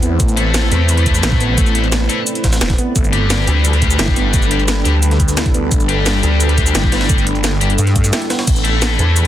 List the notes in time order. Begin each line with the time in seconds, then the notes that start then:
Already playing: E2 A3 C4 E4 A4 B4 C5 E5 B5
0.03 B3, closed hi-hat, cabasa
0.20 A1 A3, kick, closed hi-hat, cabasa
0.28 D5, closed hi-hat, cabasa
0.37 A3 E4 A4, closed hi-hat
0.54 snare, closed hi-hat, open hi-hat, cabasa
0.71 E2 A3 E4 A4, closed hi-hat, cabasa
0.89 closed hi-hat, cabasa
0.97 closed hi-hat
1.06 A3, kick, closed hi-hat, cabasa
1.15 cabasa
1.23 A1 E4, snare, closed hi-hat, cabasa
1.32 kick, snare
1.41 B3, closed hi-hat, cabasa
1.58 A3, kick, closed hi-hat, cabasa
1.66 closed hi-hat, cabasa
1.75 A3 E4 A4, closed hi-hat
1.84 closed hi-hat
1.92 snare, closed hi-hat, cabasa
2.09 A3 E4 A4, closed hi-hat, cabasa
2.27 closed hi-hat, cabasa
2.35 closed hi-hat
2.44 A1, kick, snare, closed hi-hat, open hi-hat, cabasa
2.53 snare, open hi-hat, cabasa
2.61 E1, snare, closed hi-hat, cabasa
2.70 kick, snare, closed hi-hat, open hi-hat
2.78 B3, closed hi-hat, cabasa
2.96 G1 G3 A3 D4 A4 B4, kick, closed hi-hat, cabasa
3.04 closed hi-hat, cabasa
3.13 G3 D4 G4, closed hi-hat
3.30 snare, closed hi-hat, open hi-hat, cabasa
3.41 G5
3.47 D2 G3 D4 G4, closed hi-hat, cabasa
3.65 closed hi-hat, cabasa
3.73 closed hi-hat
3.82 A3, kick, closed hi-hat, cabasa
3.91 cabasa
3.99 G1 E4, snare, closed hi-hat, cabasa
4.08 kick, snare
4.16 B3, closed hi-hat, cabasa
4.34 A3, kick, closed hi-hat, cabasa
4.42 closed hi-hat, cabasa
4.51 G3 D4 G4, closed hi-hat
4.60 closed hi-hat
4.68 snare, closed hi-hat, cabasa
4.85 D2 G3 D4 G4, closed hi-hat, cabasa
5.03 closed hi-hat, cabasa
5.11 snare, closed hi-hat
5.20 A3, kick, closed hi-hat, cabasa
5.28 snare, cabasa
5.37 E4, snare, closed hi-hat, cabasa
5.46 kick, closed hi-hat
5.54 B3, closed hi-hat, cabasa
5.72 G1 A3, kick, closed hi-hat, cabasa
5.80 closed hi-hat, cabasa
5.89 G3 D4 G4, closed hi-hat
6.06 snare, closed hi-hat, open hi-hat, cabasa
6.23 D2 G3 D4 G4, closed hi-hat, cabasa
6.41 closed hi-hat, cabasa
6.49 closed hi-hat
6.58 A3, kick, closed hi-hat, cabasa
6.66 cabasa
6.75 G1 E4, snare, closed hi-hat, cabasa
6.84 kick, snare
6.92 B3, snare, closed hi-hat, open hi-hat, cabasa
7.01 snare, open hi-hat
7.09 A3, kick, closed hi-hat, cabasa
7.18 closed hi-hat, cabasa
7.27 closed hi-hat
7.35 closed hi-hat
7.44 snare, closed hi-hat, cabasa
7.61 G1 G3 D4 G4, closed hi-hat, cabasa
7.70 closed hi-hat
7.78 G2, closed hi-hat, cabasa
7.87 snare, closed hi-hat
7.96 A3, kick, closed hi-hat, cabasa
8.04 snare, cabasa
8.13 E4, snare, closed hi-hat, open hi-hat, cabasa
8.22 closed hi-hat
8.30 B3, snare, closed hi-hat, open hi-hat, cabasa
8.39 snare, open hi-hat
8.47 A1 A3 C4 E4 B4 C5, kick, closed hi-hat, crash, cabasa
8.54 E5, closed hi-hat, cabasa
8.64 A3 E4 A4, closed hi-hat
8.82 snare, closed hi-hat, open hi-hat, cabasa
8.99 E2 A3 E4 A4, closed hi-hat, cabasa
9.16 closed hi-hat, cabasa